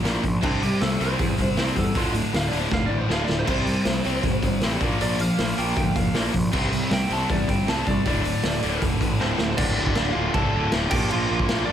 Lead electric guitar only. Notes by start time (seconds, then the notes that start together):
0.44 D4
0.63 G4
0.82 A4
1.01 C5
1.60 C5
1.79 A4
1.98 F4
2.36 F5
2.48 D5
2.60 C5
2.74 F5
2.86 D5
2.98 C5
3.13 F5
3.24 D5
3.39 C5
3.50 C5
5.02 D5
5.21 F5
5.58 G5
5.78 G5
5.96 F5
6.94 G5
7.13 A5
7.31 D5
7.50 G5
7.69 A5
7.88 D5
8.08 D5
9.21 C4 C5
9.50 C5
9.57 D4 D5
10.12 F4 F5
10.34 A4 A5
10.91 G4 G5
11.10 F4 F5
11.65 D4 D5